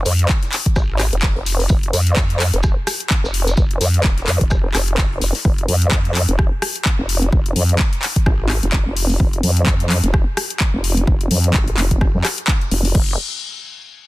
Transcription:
0.05 0.28 F2 medium
0.05 open hi-hat loud
0.05 shaker medium
0.19 closed hi-hat medium
0.29 kick loud
0.29 snare loud
0.29 clap loud
0.29 shaker medium
0.43 snare soft
0.43 closed hi-hat medium
0.52 clap medium
0.52 open hi-hat loud
0.52 shaker medium
0.66 kick medium
0.66 closed hi-hat medium
0.76 1.11 G#1 medium
0.76 kick loud
0.76 cross-stick medium
0.76 shaker medium
0.99 cross-stick medium
0.99 clap medium
0.99 open hi-hat loud
0.99 shaker medium
1.13 1.34 F1 loud
1.13 closed hi-hat medium
1.22 kick loud
1.22 snare loud
1.22 clap loud
1.22 shaker medium
1.36 1.68 F1 medium
1.36 closed hi-hat soft
1.46 open hi-hat loud
1.46 shaker medium
1.60 snare soft
1.60 open hi-hat medium
1.69 1.92 F1 loud
1.69 kick loud
1.69 shaker medium
1.83 closed hi-hat medium
1.93 2.15 F2 medium
1.93 open hi-hat loud
1.93 shaker medium
2.07 closed hi-hat medium
2.16 2.51 F2 loud
2.16 kick loud
2.16 snare loud
2.16 clap loud
2.16 shaker medium
2.30 closed hi-hat soft
2.40 snare soft
2.40 clap medium
2.40 open hi-hat loud
2.40 shaker medium
2.54 2.75 F1 loud
2.54 closed hi-hat medium
2.54 closed hi-hat soft
2.63 kick loud
2.63 cross-stick medium
2.63 shaker medium
2.87 cross-stick medium
2.87 open hi-hat loud
2.87 shaker medium
3.00 closed hi-hat medium
3.10 kick loud
3.10 clap loud
3.10 shaker medium
3.24 3.56 F1 medium
3.24 shaker medium
3.34 open hi-hat loud
3.47 closed hi-hat medium
3.47 shaker medium
3.57 3.79 F1 medium
3.57 kick loud
3.57 shaker medium
3.71 closed hi-hat soft
3.81 4.03 F2 medium
3.81 open hi-hat loud
3.81 shaker medium
3.94 closed hi-hat medium
4.04 4.26 D#1 loud
4.04 kick loud
4.04 snare loud
4.04 clap loud
4.04 shaker loud
4.17 snare soft
4.17 closed hi-hat soft
4.27 4.39 F2 medium
4.27 clap medium
4.27 open hi-hat loud
4.27 shaker medium
4.41 4.73 F1 medium
4.41 kick medium
4.41 closed hi-hat soft
4.41 closed hi-hat medium
4.50 kick loud
4.50 cross-stick medium
4.50 shaker medium
4.74 5.20 F1 loud
4.74 cross-stick medium
4.74 clap medium
4.74 open hi-hat loud
4.74 shaker medium
4.88 closed hi-hat medium
4.98 kick loud
4.98 snare loud
4.98 clap loud
4.98 shaker medium
5.13 closed hi-hat soft
5.22 5.33 F1 loud
5.22 open hi-hat loud
5.22 shaker medium
5.35 snare soft
5.35 open hi-hat medium
5.45 5.67 F1 loud
5.45 kick loud
5.58 closed hi-hat medium
5.68 5.90 F2 loud
5.68 open hi-hat loud
5.82 closed hi-hat medium
5.91 6.27 F2 loud
5.91 kick loud
5.91 clap loud
6.05 closed hi-hat medium
6.15 clap medium
6.15 open hi-hat loud
6.29 6.50 F1 loud
6.29 closed hi-hat medium
6.39 kick loud
6.39 cross-stick medium
6.62 cross-stick medium
6.62 open hi-hat loud
6.76 closed hi-hat medium
6.85 kick loud
6.85 clap loud
6.99 7.31 F1 medium
7.09 open hi-hat loud
7.22 closed hi-hat medium
7.33 7.54 F1 loud
7.33 kick loud
7.46 closed hi-hat soft
7.56 7.78 F2 medium
7.56 open hi-hat loud
7.69 closed hi-hat medium
7.79 kick loud
7.79 clap loud
7.93 closed hi-hat medium
8.02 clap medium
8.02 open hi-hat loud
8.16 kick medium
8.16 closed hi-hat medium
8.26 8.61 G#1 loud
8.26 kick loud
8.26 cross-stick medium
8.49 cross-stick medium
8.49 clap medium
8.49 open hi-hat loud
8.63 8.84 F1 medium
8.63 closed hi-hat medium
8.73 kick loud
8.73 clap loud
8.86 9.18 F1 loud
8.97 open hi-hat loud
9.10 open hi-hat medium
9.20 9.42 F1 medium
9.20 kick loud
9.33 closed hi-hat soft
9.43 9.65 F2 medium
9.43 open hi-hat medium
9.57 closed hi-hat medium
9.66 10.01 F2 loud
9.66 kick loud
9.66 clap loud
9.80 closed hi-hat medium
9.90 clap medium
9.90 open hi-hat loud
10.04 10.25 F1 medium
10.04 closed hi-hat medium
10.14 kick loud
10.14 cross-stick medium
10.37 cross-stick medium
10.37 open hi-hat loud
10.50 closed hi-hat medium
10.60 kick loud
10.60 clap loud
10.74 11.06 F1 loud
10.84 open hi-hat loud
10.97 closed hi-hat medium
11.07 11.29 F1 loud
11.07 kick loud
11.21 closed hi-hat medium
11.31 11.53 F2 medium
11.31 open hi-hat loud
11.44 closed hi-hat medium
11.54 11.76 G#1 medium
11.54 kick loud
11.54 clap loud
11.68 closed hi-hat medium
11.77 12.12 F1 loud
11.77 clap medium
11.77 open hi-hat loud
11.91 kick medium
11.91 closed hi-hat medium
12.01 kick loud
12.01 cross-stick medium
12.14 12.23 F2 loud
12.24 cross-stick medium
12.24 clap medium
12.24 open hi-hat loud
12.38 closed hi-hat medium
12.48 kick loud
12.48 clap loud
12.61 closed hi-hat soft
12.71 12.93 F1 loud
12.71 open hi-hat loud
12.85 open hi-hat medium
12.95 13.17 F1 loud
12.95 kick loud
12.95 crash medium

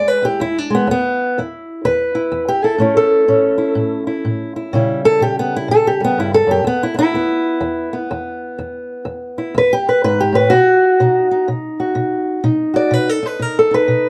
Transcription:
0.00 0.36 E2 medium
0.00 0.69 G#3 medium
0.08 0.24 B4 medium
0.22 0.41 E4 medium
0.22 0.40 G4 medium
0.40 0.84 E2 medium
0.40 0.57 E4 medium
0.58 0.73 D4 medium
0.70 0.86 G#3 soft
0.75 0.89 B3 medium
0.87 1.32 E2 medium
0.87 1.38 B3 loud
1.38 1.82 E2 medium
1.38 2.14 E4 medium
1.85 2.29 E2 medium
1.85 2.49 B4 loud
2.15 2.64 E4 soft
2.32 2.77 E2 medium
2.48 2.64 G4 medium
2.64 2.79 E4 soft
2.64 2.96 A4 medium
2.78 3.24 A2 medium
2.78 4.71 A3 soft
2.78 3.28 C#4 soft
2.78 3.57 E4 soft
2.97 4.41 A4 loud
3.28 3.73 A2 medium
3.28 4.71 C#4 soft
3.58 4.07 E4 soft
3.75 4.21 A2 medium
4.07 4.56 E4 soft
4.25 4.70 A2 medium
4.56 4.75 E4 soft
4.73 5.18 A#2 medium
4.73 6.63 C#3 soft
4.73 5.99 G3 medium
4.73 5.04 E4 medium
5.05 5.22 E4 soft
5.05 5.21 A4 loud
5.20 5.65 A#2 medium
5.20 5.38 G4 medium
5.39 5.54 B3 medium
5.56 5.71 E4 medium
5.68 6.14 A#2 medium
5.68 5.87 A4 loud
5.87 6.03 G4 medium
6.00 6.66 G3 soft
6.04 6.19 B3 loud
6.18 6.46 G2 medium
6.18 6.34 E4 medium
6.34 6.50 A4 loud
6.47 6.64 F#2 medium
6.51 6.67 G4 medium
6.64 7.10 E2 medium
6.64 6.83 B3 loud
6.83 6.97 E4 medium
6.94 7.15 B3 medium
6.99 7.95 E4 loud
7.14 7.59 E2 medium
7.14 7.93 B3 medium
7.61 8.06 E2 medium
7.93 9.72 B3 medium
8.11 8.55 E2 medium
8.59 9.03 E2 medium
9.05 9.50 E2 medium
9.38 9.55 E4 soft
9.55 9.99 E2 medium
9.55 9.72 B4 loud
9.73 9.88 G4 medium
9.89 10.03 B4 medium
10.04 10.34 G#2 medium
10.04 10.20 B4 loud
10.20 10.36 G4 medium
10.32 10.51 A2 medium
10.32 10.51 B4 medium
10.50 10.96 B2 medium
10.50 11.47 F#4 loud
11.00 11.44 B2 medium
11.00 11.31 D#4 soft
11.31 12.43 D#4 soft
11.48 11.92 B2 medium
11.80 12.43 F#4 soft
11.95 12.40 B2 medium
12.44 12.88 B2 medium
12.44 13.21 D#4 soft
12.74 13.09 F#4 soft
12.74 12.93 D5 loud
12.91 13.36 B2 medium
12.91 13.09 B4 medium
13.09 13.25 A4 medium
13.23 13.70 D#4 soft
13.23 13.42 B4 medium
13.39 13.85 B2 medium
13.39 13.57 A#4 medium
13.59 13.74 A4 medium
13.71 14.09 D#4 medium
13.71 14.09 B4 loud
13.88 14.09 B2 medium

